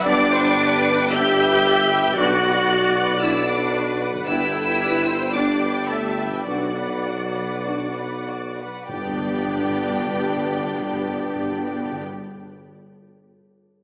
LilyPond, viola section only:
\new Staff \with { instrumentName = "Viola section" } { \time 4/4 \key g \major \tempo 4 = 104 d''8 c''8 b'4 e''2 | d''2. b'4 | b'8 a'8 b'8 c''8 d''4 e''4 | d''2.~ d''8 r8 |
<b d'>1~ | <b d'>1 | }